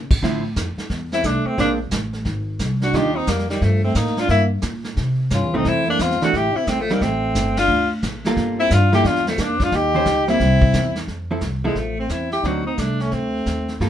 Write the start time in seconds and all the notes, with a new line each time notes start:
Already playing: C#3
0.11 kick, crash
0.23 A2 D3 F3 C4 E4, brush sweep, kick, snare
0.56 F2, kick, snare, hi-hat pedal
0.77 muted upright bass stroke, snare
0.90 E2, brush sweep, kick, snare
1.12 C4 E4, snare
1.24 C2 A3 D4, kick, snare, hi-hat pedal
1.45 A3 C4, muted upright bass stroke
1.58 A#1 G#3 A#3 C4 D4, brush sweep, kick, snare
1.91 A1, kick, snare, hi-hat pedal
2.13 snare
2.25 G#1, brush sweep, kick, snare
2.59 C2, kick, snare, hi-hat pedal
2.81 D4 F#4, snare
2.93 D#2 D#3 G3 D4 D#4 F4 G4, brush sweep, kick, snare
3.16 C4 D#4
3.27 F2 G3 A#3, kick, snare, hi-hat pedal
3.39 snare
3.49 D#3 G3, snare
3.61 G2 F3 A3, brush sweep, kick, snare
3.84 A3 C4
3.95 A2 A#3 D#4, kick, snare, hi-hat pedal
4.06 snare
4.17 D4 F4, snare
4.28 G2 A#3 E4, brush sweep, kick, snare
4.62 A#2, kick, snare, hi-hat pedal
4.84 snare
4.97 C3, brush sweep, kick, snare
5.30 G2 C#4, kick, snare, hi-hat pedal
5.34 F4
5.42 E2
5.53 C2 E3 A3 C4 D#4
5.65 F2 C4 E4, brush sweep, kick, snare
5.87 A#3 D4
5.99 E2 C4 F4, kick, snare, hi-hat pedal
6.10 snare
6.20 E3 A3 C4 D4 F#4, muted upright bass stroke, snare
6.33 A1 E4 G4, brush sweep, kick, snare
6.54 C4 E4, muted upright bass stroke
6.67 A#1 A3 C4, kick, snare, hi-hat pedal
6.80 F3 A3
6.89 G3 A#3 C4 D#4, snare
7.01 A1 A3 C4, brush sweep, kick, snare
7.35 G1, kick, snare, hi-hat pedal
7.57 D4 F4, snare, ride
7.68 D2, brush sweep
8.02 A#1, kick, snare, hi-hat pedal
8.25 G3 A#3 F4 A4, snare
8.37 G1, brush sweep, kick, snare
8.59 C4 E4
8.70 G2 D4 F4, kick, snare, hi-hat pedal
8.93 G3 A#3 E4 F4 G4 A4, snare
9.04 E2 D4 F4, brush sweep, kick, snare
9.16 snare
9.27 F3 A3, snare
9.38 F2 A#3 D4, kick, snare, hi-hat pedal
9.60 D4 F4, kick, snare
9.72 D#2 D#4 G4, brush sweep, kick, snare
9.95 D#3 C#4 G4 C5
10.05 C#2, kick, snare, hi-hat pedal
10.28 G3 A#3 C4 E4, snare
10.40 C2, brush sweep, kick, snare
10.62 kick
10.73 E2, kick, snare, hi-hat pedal
10.95 snare
11.07 F2, brush sweep, kick, snare
11.31 F3 C4 E4 A4
11.41 C2, kick, snare, hi-hat pedal
11.63 E3 F3 G#3 C4 E4 A4
11.75 A1 F3 A3, brush sweep, kick, snare
11.98 A3 C4
12.09 E2 C4 E4, kick, snare, hi-hat pedal
12.31 E4 G4, snare
12.43 D2 D3 F#3 C4 D4 D#4 F#4, brush sweep, kick, snare
12.65 C4 D#4
12.77 C2 A3 D4, kick, snare, hi-hat pedal
13.00 A3 C#4, snare
13.11 D2 A3 C4, brush sweep, kick, snare
13.46 D#2, kick, snare, hi-hat pedal
13.68 snare
13.80 G2 G3 A#3 F4 A4, brush sweep, kick, snare